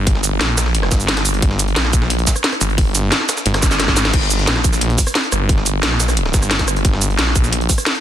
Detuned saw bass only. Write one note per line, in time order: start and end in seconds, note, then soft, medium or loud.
0.00 0.39 G1 loud
0.41 0.90 A#1 loud
0.92 1.41 G1 loud
1.42 1.75 G1 loud
1.76 2.26 A#1 medium
2.61 3.11 G1 loud
3.46 3.95 G1 loud
3.97 4.12 G#1 medium
4.14 4.46 G1 loud
4.47 4.97 A#1 loud
5.32 5.82 G1 loud
5.83 6.33 A#1 loud
6.34 6.83 G1 loud
6.85 7.17 G1 loud
7.19 7.68 A#1 loud